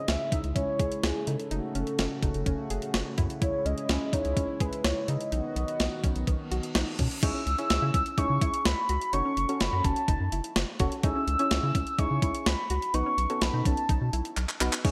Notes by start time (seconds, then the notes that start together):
Already playing: C#3 G#3 E4
0.08 C#2 C#4 E5, snare, closed hi-hat
0.32 C#2 D#4, kick, closed hi-hat
0.44 C#2, closed hi-hat
0.55 C#2 C#4 C#5, kick, closed hi-hat
0.79 C#2 G#4, kick, closed hi-hat
0.92 closed hi-hat
1.03 C#2 E4 G#4, snare, closed hi-hat
1.27 C#3 D#4 A4, closed hi-hat
1.40 closed hi-hat
1.51 F#1 A3 D#4 F#4, closed hi-hat
1.75 F#1 C#4, closed hi-hat
1.87 closed hi-hat
1.99 F#1 C#4, snare, closed hi-hat
2.23 F#1 D#4, kick, closed hi-hat
2.34 F#1, closed hi-hat
2.46 F#1 C#4, kick, closed hi-hat
2.70 F#1 G#4, closed hi-hat
2.82 closed hi-hat
2.94 F#1 F#4, snare, closed hi-hat
3.18 F#2 E4, kick, closed hi-hat
3.30 closed hi-hat
3.42 C#2 G#3 E4 C#5, kick, closed hi-hat
3.65 C#2 C#4 D#5, closed hi-hat
3.78 closed hi-hat
3.89 C#2 C#4, snare, closed hi-hat
4.13 C#2 D#4 C#5, kick, closed hi-hat
4.25 C#2, closed hi-hat
4.37 C#2 C#4, kick, closed hi-hat
4.60 C#2 G#4 B4, kick, closed hi-hat
4.73 closed hi-hat
4.84 C#2 E4 C#5, snare, closed hi-hat
5.08 C#3 D#4 D#5, closed hi-hat
5.21 closed hi-hat
5.32 B1 D#3 B3 D#4 F#4, closed hi-hat
5.56 B1 B3, closed hi-hat
5.68 closed hi-hat
5.80 B1 B3, snare, closed hi-hat
6.04 B1 C#4, kick, closed hi-hat
6.15 B1, closed hi-hat
6.27 B1 B3, kick, closed hi-hat, reverse cymbal
6.51 B1 F#4, closed hi-hat
6.63 closed hi-hat
6.75 B1 D#4, snare, closed hi-hat
6.99 B2 C#4, kick, closed hi-hat
7.11 closed hi-hat
7.23 C#2 C#4 D#4 E4 G#4 C#5 E6, kick, closed hi-hat, crash
7.34 C#4
7.46 C#2, closed hi-hat
7.58 C#4 E4 G#4 C#5, closed hi-hat
7.70 C#2, snare, closed hi-hat
7.82 C#3 E4
7.94 C#2 C#4, kick, closed hi-hat
8.06 closed hi-hat
8.18 C#2 C#4 D#4 E4 G#4 C#5 C#6, kick, closed hi-hat
8.30 C#3
8.41 C#2 E4, kick, closed hi-hat
8.54 closed hi-hat
8.65 C#2 B5, snare, closed hi-hat
8.89 C#2 F#4, closed hi-hat
9.01 closed hi-hat
9.13 F#1 C#4 D#4 F#4 A4 C#5 C#6, closed hi-hat
9.25 C#4
9.37 F#1, closed hi-hat
9.49 C#4 F#4 A4 C#5, closed hi-hat
9.60 F#1 B5, snare, closed hi-hat
9.73 F#2 F#4
9.84 F#1 C#4 A5, kick, closed hi-hat
9.96 closed hi-hat
10.08 F#1 D#4, kick, closed hi-hat
10.20 F#2
10.32 F#1 E4, closed hi-hat
10.44 closed hi-hat
10.56 F#1, snare, closed hi-hat
10.80 F#1 C#4 F#4 A4 C#5, kick, closed hi-hat
10.92 closed hi-hat
11.03 C#2 C#4 D#4 E4 G#4 C#5 E6, kick, closed hi-hat
11.16 C#4
11.27 C#2, closed hi-hat
11.39 C#4 E4 G#4 C#5, closed hi-hat
11.51 C#2, snare, closed hi-hat
11.63 C#3 E4
11.75 C#2 C#4, kick, closed hi-hat
11.87 closed hi-hat
11.99 C#2 C#4 D#4 E4 G#4 C#5 C#6, kick, closed hi-hat
12.11 C#3
12.22 C#2 E4, kick, closed hi-hat
12.35 closed hi-hat
12.46 C#2 B5, snare, closed hi-hat
12.70 C#2 F#4 B5, closed hi-hat
12.82 closed hi-hat
12.94 B1 B3 D#4 F#4 B4 C#6, closed hi-hat
13.06 C#4
13.18 B1, closed hi-hat
13.30 B3 C#4 D#4 F#4 A4, closed hi-hat
13.41 B1 B5, snare, closed hi-hat
13.53 B2 D#4
13.65 B1 C#4 A5, kick, closed hi-hat
13.77 closed hi-hat
13.89 B1 D#4, kick, closed hi-hat
14.01 B2
14.13 B1 E4, closed hi-hat
14.25 closed hi-hat
14.37 B1, clap, closed hi-hat
14.49 clap
14.61 B1 B3 D#4 F#4 B4, clap, closed hi-hat
14.73 clap, closed hi-hat
14.84 C#2 C#4 D#4 E4 G#4 C#5, kick, crash